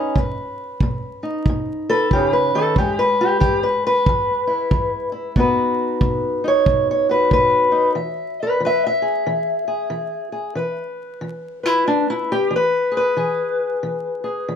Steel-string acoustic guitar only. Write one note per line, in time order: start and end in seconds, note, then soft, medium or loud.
0.00 0.11 B2 medium
0.00 0.17 C#4 medium
0.00 0.15 D#4 soft
0.00 0.18 B4 medium
0.17 0.77 B2 medium
0.17 1.90 B4 soft
0.83 1.42 B2 medium
1.23 2.74 D#4 soft
1.49 2.08 B2 medium
1.90 2.11 A4 loud
1.90 2.33 B4 soft
2.13 2.53 C#3 medium
2.13 2.34 G4 medium
2.33 2.76 B4 medium
2.55 2.78 D#3 medium
2.55 2.77 A4 medium
2.78 3.37 E3 medium
2.78 5.35 G#3 medium
2.78 2.99 G4 medium
2.99 3.62 B4 medium
3.21 3.39 G4 medium
3.40 4.02 E3 medium
3.40 3.62 G4 medium
3.63 3.85 B4 medium
3.87 5.37 B4 loud
4.09 4.68 E3 medium
4.47 5.11 E4 medium
4.71 5.31 E3 medium
5.12 5.33 E4 soft
5.37 5.97 B2 medium
5.37 7.94 B3 soft
5.37 6.43 D#4 soft
5.37 7.08 F#4 soft
5.37 6.46 B4 medium
6.01 6.61 B2 medium
6.44 7.70 D#4 soft
6.44 6.90 C#5 medium
6.67 7.27 B2 medium
6.91 7.10 C#5 medium
7.09 7.95 F#4 soft
7.09 7.32 B4 medium
7.33 7.92 B2 medium
7.33 7.95 B4 loud
7.72 7.93 D#4 soft
7.95 8.56 E3 medium
7.95 8.42 E5 soft
8.42 8.63 B4 medium
8.42 8.63 D5 medium
8.60 9.21 E3 medium
8.65 8.85 B4 medium
8.65 8.85 E5 medium
8.87 10.80 E5 loud
9.02 9.67 G#4 soft
9.27 9.86 E3 medium
9.68 10.32 G#4 medium
9.90 10.51 E3 medium
10.32 10.56 G#4 soft
10.55 11.16 E3 medium
10.55 11.63 B4 medium
11.21 11.66 E3 medium
11.63 11.87 E4 medium
11.63 12.55 B4 soft
11.88 12.09 D4 medium
12.10 12.31 E4 medium
12.32 12.52 G4 medium
12.51 13.11 E3 medium
12.56 12.96 B4 medium
12.92 13.17 G#4 soft
12.97 14.56 B4 medium
13.17 13.77 E3 medium
13.17 14.23 G#4 medium
13.83 14.42 E3 medium
14.24 14.56 G#4 soft
14.48 14.56 E3 medium